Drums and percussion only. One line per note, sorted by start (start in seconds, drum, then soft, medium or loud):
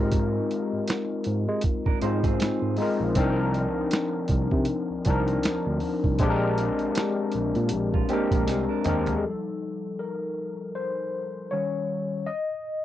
0.12 kick medium
0.12 closed hi-hat medium
0.51 closed hi-hat medium
0.88 snare loud
0.88 closed hi-hat medium
1.24 closed hi-hat medium
1.61 kick medium
1.61 closed hi-hat medium
1.86 kick medium
2.02 closed hi-hat medium
2.24 kick medium
2.24 closed hi-hat soft
2.40 snare loud
2.40 closed hi-hat medium
2.77 open hi-hat soft
3.15 kick medium
3.15 closed hi-hat medium
3.54 closed hi-hat medium
3.91 snare loud
3.91 closed hi-hat medium
4.28 kick medium
4.28 closed hi-hat medium
4.51 kick medium
4.65 closed hi-hat medium
5.05 kick medium
5.05 closed hi-hat medium
5.28 closed hi-hat soft
5.43 snare loud
5.43 closed hi-hat medium
5.80 open hi-hat soft
6.04 kick medium
6.19 kick medium
6.19 closed hi-hat medium
6.58 closed hi-hat medium
6.79 closed hi-hat soft
6.95 snare loud
6.95 closed hi-hat medium
7.32 closed hi-hat medium
7.55 closed hi-hat soft
7.69 closed hi-hat medium
7.94 kick medium
8.09 closed hi-hat medium
8.31 kick medium
8.31 closed hi-hat soft
8.48 snare medium
8.48 closed hi-hat medium
8.84 closed hi-hat medium
8.84 mid tom medium
9.06 closed hi-hat soft
9.06 floor tom medium